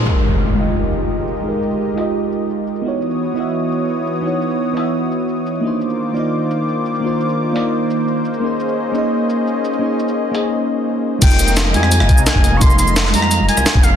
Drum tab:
CC |x---------------|----------------|----------------|----------------|
HH |----------------|------o---------|----------------|------o---------|
SH |------x---x-x-xx|--xx--x---x-x-xx|--xx--x---x-x-xx|--xx--x---x-x-xx|
SD |----------------|----------------|----------------|----------------|
BD |----------------|----------------|----------------|----------------|

CC |----------------|----------------|----------------|----------------|
HH |----------------|------o---------|----------------|------o---------|
SH |--xx--x---x-x-xx|--xx--x---x-x-xx|--xx--x---x-x-xx|--xx--x---------|
SD |----------------|----------------|----------------|----------------|
BD |----------------|----------------|----------------|----------------|

CC |x---------------|----------------|
HH |x-x-x-x-x-x-x-x-|x-x-x-o-x-x-x-x-|
SH |xxxxx---x--xx-x-|xxxxx---x--xx-x-|
SD |----o--r-r--o---|----oo-r---ro---|
BD |o---------o--o--|o------------o--|